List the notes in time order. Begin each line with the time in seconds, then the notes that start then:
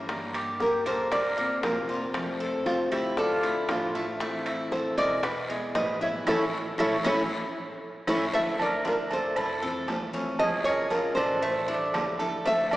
Already playing: G2
0.08 D3 G3 A#3 D4 G4, high bongo, high conga, high timbale, long guiro
0.34 G4, high conga, high timbale, claves
0.60 G4 A#4, high bongo, high conga, low timbale, short guiro
0.86 A#1 A#3 A4 C5, high conga, high timbale, short guiro
1.12 D4 A#4 D5, muted steel-string acoustic guitar stroke, high bongo, high conga, low conga, high timbale, long guiro, claves
1.37 A#3 C4 F4, high conga, low conga
1.62 F1 D3 A#3 C4 F4 A#4, high bongo, low bongo, high conga, high timbale, low timbale, short guiro
1.88 A#3 C4 F4, short guiro
2.13 C3 F3 A3 C4 F4, high bongo, high conga, high timbale, long guiro, claves
2.40 A4, high conga
2.66 C4 F4, high bongo, high conga, high timbale, low timbale, short guiro
2.92 D2 E4 G4, high bongo, high timbale, short guiro, claves
3.17 D4 F4 A4, muted steel-string acoustic guitar stroke, high bongo, high conga, long guiro
3.43 F3 A3 D4 E4, high bongo, high conga, high timbale
3.69 A1 F3 A3 D4 E4 F4, high bongo, low bongo, high conga, high timbale, low timbale, short guiro, claves
3.95 F3 A3 D4 E4, high bongo, short guiro
4.20 E3 A3 C4 E4, high bongo, high conga, high timbale, long guiro
4.46 E4, high conga, high timbale, claves
4.72 A4 C5, high bongo, high conga, low timbale, short guiro
4.98 E1 G#3 A#4 D5, high timbale, short guiro
5.23 B3, muted steel-string acoustic guitar stroke, high bongo, high conga, low conga, high timbale, long guiro, claves
5.49 E3 G#3 B3 E4, high conga
5.75 A1 E3 G#3 E4 B4 D#5, high bongo, low bongo, high conga, high timbale, low timbale, short guiro
6.01 E3 G#3 B3 E4 C#5 E5, high conga, short guiro
6.27 A1 E3 A3 C#4 E4 A4 C#5, low bongo, high conga, high timbale, long guiro, claves
6.78 A1 E3 A3 C#4 E4 A4 C#5, low bongo, high conga, high timbale, long guiro, claves
7.03 A1 E3 A3 C#4 E4 A4 C#5, low bongo, high conga, high timbale, long guiro, claves
8.07 A1 E3 A3 C#4 E4 A4 C#5, low bongo, high conga, high timbale, long guiro, claves
8.32 D3 F3 A3 D4 E4 A4 E5, cowbell, high conga, low agogo, long guiro
8.59 A#4 D5, high conga, low agogo, claves
8.85 D4 F4 A#4, cowbell, high conga, low timbale, short guiro
9.11 F2 A4 C5, cowbell, low agogo, short guiro
9.36 E4, muted steel-string acoustic guitar stroke, cowbell, high conga, low conga, low agogo, long guiro, claves
9.62 E3 A3 C4 F4 A4, high conga, low conga
9.88 C#2 E3 A3 F4, cowbell, high conga, low timbale, low agogo, short guiro
10.13 E3 A3 C4 C#4 F4, cowbell, high conga, short guiro
10.38 C#3 F3 G#3 C#4 F4 G#4 D#5, cowbell, high conga, low agogo, long guiro, claves
10.64 G#3 A#4 C#5
10.90 F4 A#4, cowbell, high conga, low timbale, low agogo, short guiro
11.15 A1 D4 A4 C5, high conga, low agogo, short guiro, claves
11.42 A3, muted steel-string acoustic guitar stroke, cowbell, high conga, long guiro
11.68 G3 D4 E4, cowbell
11.94 D2 D3 G3 E4, cowbell, high conga, low timbale, low agogo, short guiro, claves
12.19 G3 D4 E4 A4, cowbell, high conga, low agogo, short guiro
12.45 D3 F3 A3 D4 E4 A4 E5, cowbell, low agogo, long guiro
12.71 A#4 D5, high conga, low agogo, claves